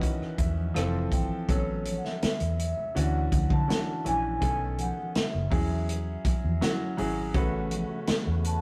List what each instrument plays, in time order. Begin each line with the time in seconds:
Already playing: grand piano D#3 E3 C#4 D#4 F#4 B4, vibraphone B4
0.01 kick, closed hi-hat, muted conga
0.21 muted fingered electric bass stroke, cross-stick
0.38 fingered electric bass E2, grand piano E5, kick, closed hi-hat, high conga
0.58 high conga
0.74 fingered electric bass F1, grand piano E3 F3 C4 A4 F5, cross-stick, closed hi-hat
1.12 fingered electric bass G#1, grand piano G5, kick, closed hi-hat, low conga
1.48 fingered electric bass A1, grand piano F#3 B3 C#4 A4, vibraphone C#5, kick, closed hi-hat
1.85 closed hi-hat, high conga
1.98 vibraphone F#5
2.04 vibraphone E5, snare, high conga
2.22 muted fingered electric bass stroke, snare, closed hi-hat
2.40 fingered electric bass E2, closed hi-hat
2.59 vibraphone E5, closed hi-hat, muted conga
2.77 low conga
2.95 fingered electric bass D2, grand piano E3 C#4 D4 F#4, vibraphone F#5, closed hi-hat
3.32 fingered electric bass D2, kick, closed hi-hat, high conga
3.50 fingered electric bass D3, vibraphone A5, kick, high conga
3.68 grand piano E3 C#4 D4 F#4, snare, closed hi-hat
4.04 fingered electric bass A#1, grand piano E3 C#4 D4 E4, vibraphone G#5, closed hi-hat, muted conga, low conga
4.41 fingered electric bass B1, grand piano D#3 B3 C#4 A4, kick, closed hi-hat
4.78 vibraphone F#5, closed hi-hat, muted conga, high conga
4.97 high conga
5.15 vibraphone E5, muted fingered electric bass stroke, snare, closed hi-hat
5.35 fingered electric bass F#1
5.50 fingered electric bass E2, grand piano F#3 C#4 E4 G#4, kick, open hi-hat, muted conga
5.70 low conga
5.88 closed hi-hat, muted conga
6.25 muted fingered electric bass stroke, kick, closed hi-hat, muted conga, high conga
6.44 fingered electric bass E2, high conga
6.61 grand piano F#3 C#4 E4 F#4, snare, closed hi-hat, muted conga
6.97 fingered electric bass G#1, grand piano F#3 C#4 E4 G#4, open hi-hat, muted conga, low conga
7.34 fingered electric bass A1, tonewheel organ C#3 A3 B3 F#4, grand piano A3 C#4 F#4 B4, kick, closed hi-hat, muted conga
7.71 closed hi-hat, muted conga, high conga
7.89 high conga
8.07 muted fingered electric bass stroke, snare, closed hi-hat
8.27 fingered electric bass E2
8.44 vibraphone A5, closed hi-hat